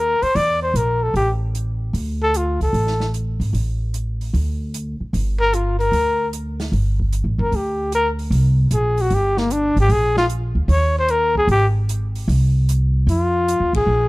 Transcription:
Already playing: upright bass D#2, trumpet A#4
0.22 trumpet C5, muted upright bass stroke, open hi-hat
0.35 upright bass E2, trumpet D5, open hi-hat
0.62 trumpet C5
0.74 upright bass A#1, trumpet A#4, closed hi-hat
1.03 trumpet A4
1.14 upright bass A1, trumpet G4, open hi-hat
1.55 closed hi-hat
1.93 upright bass D2, open hi-hat
2.23 trumpet A4
2.34 trumpet F4, closed hi-hat
2.60 upright bass C#2, trumpet A4, open hi-hat
2.73 upright bass A1, open hi-hat
2.87 snare
3.00 snare
3.14 closed hi-hat
3.40 upright bass G#1, open hi-hat
3.53 upright bass A1, open hi-hat
3.94 closed hi-hat
4.21 open hi-hat
4.33 upright bass D2, open hi-hat
4.74 closed hi-hat
5.00 muted upright bass stroke
5.13 upright bass G1, open hi-hat
5.40 trumpet A#4
5.53 trumpet F4, closed hi-hat
5.79 trumpet A#4, open hi-hat
5.92 upright bass D2, open hi-hat
6.33 closed hi-hat
6.60 snare, open hi-hat
6.72 upright bass G1, open hi-hat
7.00 kick
7.13 closed hi-hat
7.24 upright bass A1
7.38 upright bass F#1, trumpet A#4
7.52 upright bass D2, trumpet G4, open hi-hat
7.92 trumpet A#4, closed hi-hat
8.19 open hi-hat
8.30 upright bass C2, open hi-hat
8.71 upright bass A#1, trumpet G#4, closed hi-hat
8.97 trumpet F#4, open hi-hat
9.10 upright bass G1, open hi-hat
9.14 trumpet G4
9.37 trumpet A#3, snare
9.50 trumpet D4, closed hi-hat
9.76 upright bass G#1, open hi-hat
9.80 trumpet G4
9.89 upright bass A#1, trumpet G#4, open hi-hat
10.17 trumpet F4, snare
10.30 closed hi-hat
10.55 upright bass D2
10.68 upright bass D#2, trumpet C#5, open hi-hat
10.99 trumpet C5
11.09 trumpet A#4, closed hi-hat
11.35 trumpet G#4, kick
11.47 upright bass G#1, open hi-hat
11.52 trumpet G4
11.89 closed hi-hat
12.15 open hi-hat
12.28 upright bass C2, open hi-hat
12.69 closed hi-hat
13.07 upright bass F2, trumpet F4, open hi-hat
13.48 closed hi-hat
13.60 upright bass D#2
13.73 upright bass A1, trumpet G#4, kick, ride
13.86 upright bass A#1

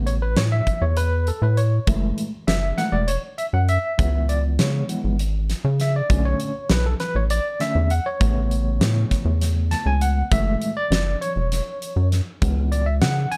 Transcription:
Already playing: analog synth bass A1, tine electric piano C#3 A3 B3
0.07 tine electric piano C#5, closed hi-hat
0.22 tine electric piano B4
0.36 analog synth bass A2, tine electric piano C#5, snare, closed hi-hat
0.52 tine electric piano E5
0.67 kick, closed hi-hat
0.81 analog synth bass E2, tine electric piano C#5
0.97 tine electric piano B4, closed hi-hat
1.27 tine electric piano A4, closed hi-hat
1.42 analog synth bass A2, tine electric piano B4
1.57 tine electric piano C#5, closed hi-hat
1.87 analog synth bass F#1, tine electric piano E3 G#3 A3, kick, closed hi-hat
2.18 closed hi-hat
2.47 analog synth bass F#1, tine electric piano E5, snare, closed hi-hat
2.77 tine electric piano E3 G#3 A3 F#5, snare, closed hi-hat
2.92 analog synth bass E1, tine electric piano D5
3.08 tine electric piano C#5, closed hi-hat
3.38 tine electric piano E5, closed hi-hat
3.53 analog synth bass F#2, tine electric piano F#5
3.69 tine electric piano E5, closed hi-hat
3.98 analog synth bass C#2, tine electric piano E3 G#3 B3, kick, closed hi-hat
4.29 tine electric piano D5, closed hi-hat
4.59 analog synth bass C#3, tine electric piano C#5, snare, closed hi-hat
4.89 tine electric piano E3 G#3 B3, closed hi-hat
5.04 analog synth bass G#1
5.19 closed hi-hat
5.50 snare, closed hi-hat
5.65 analog synth bass C#3
5.80 tine electric piano E5, snare, closed hi-hat
5.96 tine electric piano D5
6.09 analog synth bass B1, tine electric piano D3 A3 C#4, kick, closed hi-hat
6.25 tine electric piano C#5
6.40 closed hi-hat
6.70 analog synth bass B1, tine electric piano B4, snare, closed hi-hat
6.86 tine electric piano A4
7.00 tine electric piano B4, snare, closed hi-hat
7.15 analog synth bass A1, tine electric piano C#5
7.30 tine electric piano D5, closed hi-hat
7.60 tine electric piano D3 A3 C#4 E5, snare, closed hi-hat
7.75 analog synth bass E2
7.90 tine electric piano F#5, closed hi-hat
8.06 tine electric piano C#5
8.20 analog synth bass A1, tine electric piano C#3 A3 B3, kick, closed hi-hat
8.51 closed hi-hat
8.80 analog synth bass A2, snare, closed hi-hat
9.11 kick, snare, closed hi-hat
9.25 analog synth bass E2
9.41 snare, closed hi-hat
9.71 tine electric piano A5, snare, closed hi-hat
9.86 analog synth bass C#2, tine electric piano G#5
10.01 tine electric piano F#5, closed hi-hat
10.31 analog synth bass F#1, tine electric piano E3 G#3 A3 E5, kick, closed hi-hat
10.62 closed hi-hat
10.77 tine electric piano D5
10.91 analog synth bass F#1, snare, closed hi-hat
11.21 tine electric piano C#5, closed hi-hat
11.36 analog synth bass E1
11.52 snare, closed hi-hat
11.82 closed hi-hat
11.96 analog synth bass F#2
12.12 snare, closed hi-hat
12.41 analog synth bass C#2, tine electric piano E3 G#3 B3, kick, closed hi-hat
12.72 tine electric piano D5, closed hi-hat
12.86 tine electric piano E5
13.01 analog synth bass C#3, tine electric piano F#5, snare, closed hi-hat
13.31 tine electric piano G#5, closed hi-hat

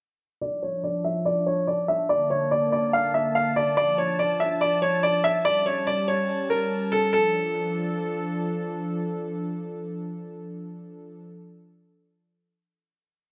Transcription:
0.41 analog synth pad F3 D4 A5, upright piano D5
0.63 upright piano C#5
0.84 upright piano D5
1.04 upright piano E5
1.25 upright piano D5
1.46 upright piano C#5
1.67 upright piano D5
1.88 upright piano E5
2.09 analog synth pad D3 A#3, upright piano D5
2.30 upright piano C#5
2.51 upright piano D5
2.72 upright piano D5
2.93 upright piano F5
3.14 upright piano E5
3.35 upright piano F5
3.56 upright piano D5
3.77 analog synth pad F3 D4, upright piano D5
3.98 upright piano C#5
4.19 upright piano D5
4.40 upright piano E5
4.61 upright piano D5
4.82 upright piano C#5
5.03 upright piano D5
5.24 upright piano E5
5.45 analog synth pad G3 C#4, upright piano D5
5.66 upright piano C#5
5.87 upright piano D5
6.08 upright piano C#5
6.50 upright piano A#4
6.92 upright piano A4
7.13 analog synth pad F3 D4 A4, upright piano A4

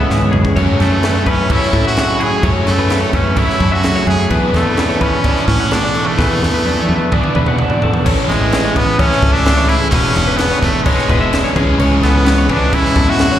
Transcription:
Already playing: clean electric guitar G#2 E3 B3 E4 G#4 E5, overdriven electric guitar C#3 E3 G#3 C#4 G#4, trumpet B3
0.10 fingered electric bass G#2, clean electric guitar G#4, snare
0.21 clean electric guitar C#5, mid tom
0.32 fingered electric bass F#2, clean electric guitar C#3 G#4, mid tom
0.45 kick
0.56 clean electric guitar F#2 C#5, fingered electric bass F#2, overdriven electric guitar F#3 A3 C#4 F#4, kick, crash
0.80 fingered electric bass F#2, trumpet A3, clean electric guitar A4, snare, crash
0.92 clean electric guitar B4
1.03 clean electric guitar F#3 E4, snare, crash
1.15 clean electric guitar C#5
1.26 clean electric guitar A3 B4, trumpet C#4, kick, crash
1.49 overdriven electric guitar F#3 A3 C#4, clean electric guitar A3 C#5, trumpet E4, kick, crash
1.53 overdriven electric guitar F#4
1.63 snare
1.73 fingered electric bass A2, clean electric guitar C#3 A3 A4, kick, crash
1.85 trumpet F#4, clean electric guitar E5
1.97 clean electric guitar E4, snare, crash
2.09 clean electric guitar C#5
2.20 clean electric guitar E4 G#4, trumpet G#4, crash
2.43 clean electric guitar F#2 C#5, fingered electric bass F#2, overdriven electric guitar F#3 A3 C#4 F#4, kick, crash
2.67 fingered electric bass F#2, trumpet A3, clean electric guitar A4, snare, crash
2.78 clean electric guitar B4
2.90 clean electric guitar F#3 E4, snare, crash
3.02 clean electric guitar C#5
3.13 fingered electric bass F#2, clean electric guitar A3 B4, trumpet C#4, kick, crash
3.36 overdriven electric guitar F#3 A3 C#4 F#4, clean electric guitar A3 C#5, trumpet E4, kick, crash
3.50 snare
3.60 fingered electric bass F#2, clean electric guitar C#3 A3 A4, kick, crash
3.72 trumpet F#4, clean electric guitar E5
3.83 clean electric guitar E4, snare, crash
3.96 clean electric guitar C#5
4.07 fingered electric bass F#2, clean electric guitar E4 G#4, trumpet G#4, crash
4.30 fingered electric bass E2, clean electric guitar E2 B4, overdriven electric guitar E3 B3 D4 G#4, kick, crash
4.54 fingered electric bass E2, trumpet A3, clean electric guitar A4, snare, crash
4.65 clean electric guitar B4
4.77 clean electric guitar E3 C#4, snare, crash
4.89 clean electric guitar E4 C#5
5.01 clean electric guitar A3 B4, trumpet C#4, kick, crash
5.24 overdriven electric guitar E3 B3 D4 G#4, clean electric guitar E4 D5, kick, crash
5.37 snare
5.48 fingered electric bass A2, clean electric guitar B2 F#4 B4, trumpet C#4, kick, crash
5.60 clean electric guitar F#5
5.71 clean electric guitar C#4, trumpet D4, snare, crash
5.84 clean electric guitar E4 D5
5.95 clean electric guitar F#4 A4, crash
6.07 trumpet A3
6.17 clean electric guitar E2 B4, fingered electric bass E2, overdriven electric guitar E3 B3 D4 G#4, kick, snare
6.42 fingered electric bass E2, clean electric guitar A4, snare
6.54 clean electric guitar B4
6.65 clean electric guitar E3 D4, high tom
6.77 clean electric guitar C#5
6.89 fingered electric bass E2, clean electric guitar B4, high tom
7.11 overdriven electric guitar E3 B3 D4 G#4, clean electric guitar D4 D5, kick, mid tom
7.24 mid tom
7.35 fingered electric bass E2, clean electric guitar B2 E4 B4, mid tom
7.46 clean electric guitar F#4 F#5, mid tom
7.58 clean electric guitar D4, mid tom
7.70 clean electric guitar D5, floor tom
7.82 fingered electric bass E2, clean electric guitar F#4 A4, floor tom
7.94 floor tom
8.05 fingered electric bass A1, overdriven electric guitar A2 E3 A3 C#4 E4 A4, clean electric guitar C#5, kick, crash
8.28 fingered electric bass A1, trumpet G#3, clean electric guitar A4, snare, crash
8.41 clean electric guitar B4
8.52 snare, crash
8.65 clean electric guitar C#5
8.76 trumpet B3, clean electric guitar B4, kick, crash
8.98 overdriven electric guitar A2 E3 A3 C#4 E4 A4, trumpet C#4, clean electric guitar C#5, kick, crash
9.12 snare
9.22 fingered electric bass C#2, clean electric guitar A4, kick, crash
9.32 trumpet D4, clean electric guitar E5
9.46 snare, crash
9.58 clean electric guitar C#5
9.69 trumpet E4, clean electric guitar G#4, crash
9.91 fingered electric bass E1, overdriven electric guitar E3 B3 D4, trumpet C#4, clean electric guitar B4, kick, crash
9.95 overdriven electric guitar G#4
10.16 fingered electric bass E1, clean electric guitar G#4, snare, crash
10.28 clean electric guitar B4
10.37 trumpet B3, snare, crash
10.51 clean electric guitar C#5
10.62 fingered electric bass E1, trumpet A3, clean electric guitar B4, kick, crash
10.83 overdriven electric guitar E3 B3, trumpet G#3, clean electric guitar C#5, kick, crash
10.88 overdriven electric guitar D4 G#4
10.98 snare
11.09 fingered electric bass E1, clean electric guitar B4, kick, crash
11.21 clean electric guitar E5
11.33 snare, crash
11.44 clean electric guitar C#5
11.56 fingered electric bass C#2, overdriven electric guitar C#3 E3 G#3 C#4 G#4, clean electric guitar G#4, kick, crash
11.79 fingered electric bass C#2, clean electric guitar C#5, crash
12.03 fingered electric bass C#2, trumpet B3, clean electric guitar A4, snare, crash
12.15 clean electric guitar B4
12.26 snare, crash
12.38 clean electric guitar C#5
12.49 overdriven electric guitar C#3 E3 G#3 C#4 G#4, trumpet D4, clean electric guitar B4, kick, crash
12.73 trumpet E4, clean electric guitar C#5, kick, crash
12.85 snare
12.95 fingered electric bass E2, clean electric guitar A4, kick, crash
13.08 trumpet F#4, clean electric guitar E5
13.19 snare, crash
13.32 clean electric guitar C#5

